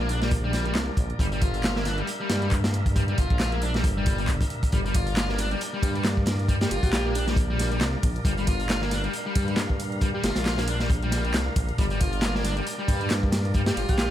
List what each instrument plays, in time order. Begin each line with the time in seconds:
Already playing: detuned saw bass A#1, tonewheel organ G3 A#3 D4 A#4 D5
0.00 distorted electric guitar A#3
0.09 distorted electric guitar D4, closed hi-hat
0.22 distorted electric guitar G3, snare, closed hi-hat
0.31 kick, closed hi-hat
0.44 distorted electric guitar G3
0.53 snare, closed hi-hat
0.66 distorted electric guitar G3, closed hi-hat
0.75 detuned saw bass C2, snare, clap, closed hi-hat
0.97 detuned saw bass A#1, kick, closed hi-hat
1.10 closed hi-hat
1.19 detuned saw bass G1, distorted electric guitar G3, tonewheel organ E5, kick, closed hi-hat
1.32 distorted electric guitar G3, closed hi-hat
1.41 distorted electric guitar F4, kick, closed hi-hat
1.54 closed hi-hat
1.64 snare, clap, closed hi-hat
1.76 distorted electric guitar A#3, snare
1.85 distorted electric guitar D4, snare, closed hi-hat
1.98 distorted electric guitar G3, closed hi-hat
2.07 closed hi-hat
2.20 distorted electric guitar G3
2.30 detuned saw bass G2, snare, closed hi-hat
2.42 distorted electric guitar G3, closed hi-hat
2.52 kick, clap, closed hi-hat
2.64 snare, closed hi-hat
2.74 closed hi-hat
2.86 kick, closed hi-hat
2.96 distorted electric guitar G3, kick, closed hi-hat
3.08 distorted electric guitar G3, closed hi-hat
3.18 detuned saw bass G1, distorted electric guitar F4, kick, closed hi-hat
3.30 detuned saw bass A#1, kick, closed hi-hat
3.40 snare, clap, closed hi-hat
3.52 distorted electric guitar A#3, closed hi-hat
3.62 distorted electric guitar D4, closed hi-hat
3.74 distorted electric guitar G3, snare, closed hi-hat
3.84 detuned saw bass G1, kick, closed hi-hat
3.97 distorted electric guitar G3
4.06 kick, closed hi-hat
4.18 distorted electric guitar G3, closed hi-hat
4.28 kick, clap, closed hi-hat
4.41 kick, closed hi-hat
4.50 closed hi-hat
4.63 kick, closed hi-hat
4.72 detuned saw bass G1, distorted electric guitar G3, tonewheel organ D5, kick, closed hi-hat
4.86 distorted electric guitar G3, closed hi-hat
4.94 distorted electric guitar F4, kick, closed hi-hat, ride
5.07 closed hi-hat
5.16 snare, clap, closed hi-hat
5.29 distorted electric guitar A#3, snare
5.38 distorted electric guitar D4, snare, closed hi-hat, ride
5.51 distorted electric guitar G3, closed hi-hat
5.61 closed hi-hat
5.73 distorted electric guitar G3
5.83 detuned saw bass G2, kick, closed hi-hat, ride
5.95 distorted electric guitar G3, closed hi-hat
6.05 snare, clap, closed hi-hat
6.17 kick
6.26 snare, closed hi-hat, ride
6.39 closed hi-hat
6.48 distorted electric guitar G3, kick, closed hi-hat
6.61 distorted electric guitar G3, alto saxophone G4, snare, closed hi-hat
6.71 detuned saw bass G1, distorted electric guitar F4, alto saxophone G4, closed hi-hat, ride
6.83 detuned saw bass A#1, alto saxophone G4, kick, closed hi-hat
6.93 snare, clap, closed hi-hat
7.05 distorted electric guitar A#3
7.15 distorted electric guitar D4, closed hi-hat, ride
7.27 distorted electric guitar G3, snare, closed hi-hat
7.36 kick, closed hi-hat
7.50 distorted electric guitar G3
7.59 snare, closed hi-hat, ride
7.72 distorted electric guitar G3, closed hi-hat
7.81 detuned saw bass C2, snare, clap, closed hi-hat
8.03 detuned saw bass A#1, kick, closed hi-hat, ride
8.16 closed hi-hat
8.25 detuned saw bass G1, distorted electric guitar G3, tonewheel organ F5, kick, closed hi-hat
8.37 distorted electric guitar G3, closed hi-hat
8.47 distorted electric guitar F4, kick, closed hi-hat, ride
8.60 closed hi-hat
8.70 snare, clap, closed hi-hat
8.82 distorted electric guitar A#3, snare
8.91 distorted electric guitar D4, snare, closed hi-hat, ride
9.04 distorted electric guitar G3, closed hi-hat
9.13 closed hi-hat
9.26 distorted electric guitar G3
9.35 detuned saw bass G2, kick, closed hi-hat, ride
9.48 distorted electric guitar G3, closed hi-hat
9.57 snare, clap, closed hi-hat
9.70 kick
9.80 closed hi-hat, ride
9.92 closed hi-hat
10.01 distorted electric guitar G3, kick, closed hi-hat
10.14 distorted electric guitar G3, alto saxophone G4
10.23 detuned saw bass G1, distorted electric guitar F4, alto saxophone G4, snare, closed hi-hat, ride
10.36 detuned saw bass A#1, snare, closed hi-hat
10.46 snare, clap, closed hi-hat
10.58 distorted electric guitar A#3, snare, closed hi-hat
10.68 distorted electric guitar D4, closed hi-hat, ride
10.80 distorted electric guitar G3, snare, closed hi-hat
10.90 kick, closed hi-hat
11.03 distorted electric guitar G3, closed hi-hat
11.11 snare, closed hi-hat, ride
11.25 distorted electric guitar G3, closed hi-hat
11.34 detuned saw bass C2, snare, clap, closed hi-hat, ride
11.56 detuned saw bass A#1, kick, closed hi-hat, ride
11.69 closed hi-hat
11.78 detuned saw bass G1, distorted electric guitar G3, tonewheel organ D5, kick, closed hi-hat
11.90 distorted electric guitar G3, closed hi-hat
12.00 distorted electric guitar F4, kick, closed hi-hat, ride
12.12 closed hi-hat
12.22 snare, clap, closed hi-hat
12.35 distorted electric guitar A#3, snare
12.44 distorted electric guitar D4, snare, closed hi-hat, ride
12.57 distorted electric guitar G3, closed hi-hat
12.67 closed hi-hat
12.79 distorted electric guitar G3
12.88 detuned saw bass G2, kick, closed hi-hat, ride
13.01 distorted electric guitar G3, closed hi-hat
13.10 snare, clap, closed hi-hat
13.23 kick
13.32 snare, closed hi-hat, ride
13.45 closed hi-hat
13.54 distorted electric guitar G3, kick, closed hi-hat
13.66 distorted electric guitar G3, alto saxophone G4, snare, closed hi-hat
13.76 detuned saw bass G1, distorted electric guitar F4, alto saxophone G4, closed hi-hat, ride
13.88 detuned saw bass A#1, alto saxophone G4, kick, closed hi-hat
13.98 snare, clap, closed hi-hat